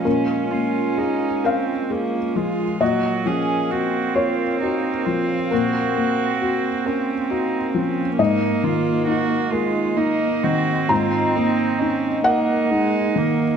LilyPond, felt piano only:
<<
  \new Staff \with { instrumentName = "Felt piano" } { \time 6/8 \key ges \lydian \tempo 4. = 44 bes'4. f''4. | ees''4. des''4. | bes'4. r4. | ees''2. |
bes''4. ges''4. | }
  \new Staff \with { instrumentName = "Felt piano" } { \time 6/8 \key ges \lydian <bes, f>8 bes8 aes'8 bes'8 aes'8 f8 | bes,8 f8 ges'8 bes'8 ges'8 f8 | bes,8 bes8 ges'8 bes'8 ges'8 f8 | aes,8 ees8 ees'8 bes'8 ees'8 ees8 |
aes,8 bes8 ees'8 bes'8 ees'8 ees8 | }
>>